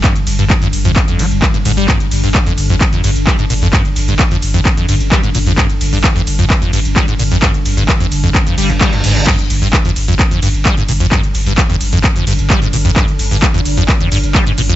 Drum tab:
CC |----------------|----------------|----------------|----------------|
RD |--x---x---x---x-|--x---x---x---x-|--x---x---x---x-|--x---x---x---x-|
HH |xxoxxxoxxxoxxxox|xxooxxoxxxoxxxox|xxoxxxoxxxoxxxox|xxooxxoxxxoxxxox|
SH |xxxxxxxxxxxxxxxx|xxxxxxxxxxxxxxxx|xxxxxxxxxxxxxxxx|xxxxxxxxxxxxxxxx|
CP |x---x---x---x---|x---x---x---x---|x---x---x---x---|x---x---x---x---|
BD |o---o---o---o---|o---o---o---o---|o---o---o---o---|o---o---o---o---|

CC |----------------|x---------------|----------------|----------------|
RD |--x---x---x---x-|--x---x---x---x-|--x---x---x---x-|--x---x---x---x-|
HH |xxoxxxoxxxoxxxox|xxooxxoxxxoxxxox|xxoxxxoxxxoxxxox|xxooxxoxxxoxxxox|
SH |xxxxxxxxxxxxxxxx|xxxxxxxxxxxxxxxx|xxxxxxxxxxxxxxxx|xxxxxxxxxxxxxxxx|
CP |x---x---x---x---|x---x---x---x---|x---x---x---x---|x---x---x---x---|
BD |o---o---o---o---|o---o---o---o---|o---o---o---o---|o---o---o---o---|